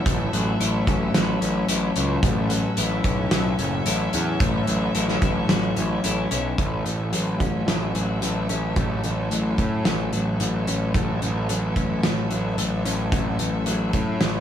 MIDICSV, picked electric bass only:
0, 0, Header, 1, 2, 480
1, 0, Start_track
1, 0, Key_signature, 3, "major"
1, 0, Tempo, 543971
1, 56, Time_signature, 4, 2, 24, 8
1, 12708, End_track
2, 0, Start_track
2, 0, Title_t, "Picked electric bass"
2, 0, Program_c, 0, 34
2, 55, Note_on_c, 0, 33, 91
2, 235, Note_off_c, 0, 33, 0
2, 293, Note_on_c, 0, 33, 89
2, 473, Note_off_c, 0, 33, 0
2, 534, Note_on_c, 0, 33, 84
2, 714, Note_off_c, 0, 33, 0
2, 772, Note_on_c, 0, 33, 84
2, 952, Note_off_c, 0, 33, 0
2, 1011, Note_on_c, 0, 33, 82
2, 1192, Note_off_c, 0, 33, 0
2, 1254, Note_on_c, 0, 33, 82
2, 1433, Note_off_c, 0, 33, 0
2, 1494, Note_on_c, 0, 33, 82
2, 1673, Note_off_c, 0, 33, 0
2, 1734, Note_on_c, 0, 37, 86
2, 1913, Note_off_c, 0, 37, 0
2, 1968, Note_on_c, 0, 33, 93
2, 2329, Note_off_c, 0, 33, 0
2, 2454, Note_on_c, 0, 33, 88
2, 2633, Note_off_c, 0, 33, 0
2, 2686, Note_on_c, 0, 35, 82
2, 2868, Note_off_c, 0, 35, 0
2, 2929, Note_on_c, 0, 35, 93
2, 3110, Note_off_c, 0, 35, 0
2, 3171, Note_on_c, 0, 30, 85
2, 3351, Note_off_c, 0, 30, 0
2, 3410, Note_on_c, 0, 33, 89
2, 3590, Note_off_c, 0, 33, 0
2, 3650, Note_on_c, 0, 40, 85
2, 3830, Note_off_c, 0, 40, 0
2, 3887, Note_on_c, 0, 33, 92
2, 4068, Note_off_c, 0, 33, 0
2, 4132, Note_on_c, 0, 33, 80
2, 4311, Note_off_c, 0, 33, 0
2, 4372, Note_on_c, 0, 33, 94
2, 4552, Note_off_c, 0, 33, 0
2, 4608, Note_on_c, 0, 33, 89
2, 4789, Note_off_c, 0, 33, 0
2, 4851, Note_on_c, 0, 33, 90
2, 5031, Note_off_c, 0, 33, 0
2, 5095, Note_on_c, 0, 33, 87
2, 5273, Note_off_c, 0, 33, 0
2, 5335, Note_on_c, 0, 33, 86
2, 5514, Note_off_c, 0, 33, 0
2, 5577, Note_on_c, 0, 35, 89
2, 5755, Note_off_c, 0, 35, 0
2, 5808, Note_on_c, 0, 33, 75
2, 6026, Note_off_c, 0, 33, 0
2, 6054, Note_on_c, 0, 33, 75
2, 6269, Note_off_c, 0, 33, 0
2, 6298, Note_on_c, 0, 33, 81
2, 6512, Note_off_c, 0, 33, 0
2, 6531, Note_on_c, 0, 33, 73
2, 6748, Note_off_c, 0, 33, 0
2, 6773, Note_on_c, 0, 33, 75
2, 6989, Note_off_c, 0, 33, 0
2, 7013, Note_on_c, 0, 33, 77
2, 7230, Note_off_c, 0, 33, 0
2, 7255, Note_on_c, 0, 33, 73
2, 7471, Note_off_c, 0, 33, 0
2, 7496, Note_on_c, 0, 33, 74
2, 7711, Note_off_c, 0, 33, 0
2, 7734, Note_on_c, 0, 33, 78
2, 7951, Note_off_c, 0, 33, 0
2, 7977, Note_on_c, 0, 33, 74
2, 8192, Note_off_c, 0, 33, 0
2, 8220, Note_on_c, 0, 33, 75
2, 8434, Note_off_c, 0, 33, 0
2, 8456, Note_on_c, 0, 45, 73
2, 8672, Note_off_c, 0, 45, 0
2, 8702, Note_on_c, 0, 33, 78
2, 8916, Note_off_c, 0, 33, 0
2, 8946, Note_on_c, 0, 33, 72
2, 9158, Note_off_c, 0, 33, 0
2, 9183, Note_on_c, 0, 33, 73
2, 9397, Note_off_c, 0, 33, 0
2, 9422, Note_on_c, 0, 33, 73
2, 9636, Note_off_c, 0, 33, 0
2, 9660, Note_on_c, 0, 33, 79
2, 9875, Note_off_c, 0, 33, 0
2, 9901, Note_on_c, 0, 33, 73
2, 10116, Note_off_c, 0, 33, 0
2, 10143, Note_on_c, 0, 33, 85
2, 10357, Note_off_c, 0, 33, 0
2, 10378, Note_on_c, 0, 33, 80
2, 10594, Note_off_c, 0, 33, 0
2, 10623, Note_on_c, 0, 33, 80
2, 10837, Note_off_c, 0, 33, 0
2, 10862, Note_on_c, 0, 33, 73
2, 11077, Note_off_c, 0, 33, 0
2, 11101, Note_on_c, 0, 33, 74
2, 11316, Note_off_c, 0, 33, 0
2, 11341, Note_on_c, 0, 33, 79
2, 11556, Note_off_c, 0, 33, 0
2, 11581, Note_on_c, 0, 33, 77
2, 11796, Note_off_c, 0, 33, 0
2, 11820, Note_on_c, 0, 33, 68
2, 12035, Note_off_c, 0, 33, 0
2, 12060, Note_on_c, 0, 33, 79
2, 12275, Note_off_c, 0, 33, 0
2, 12296, Note_on_c, 0, 45, 76
2, 12513, Note_off_c, 0, 45, 0
2, 12541, Note_on_c, 0, 33, 80
2, 12708, Note_off_c, 0, 33, 0
2, 12708, End_track
0, 0, End_of_file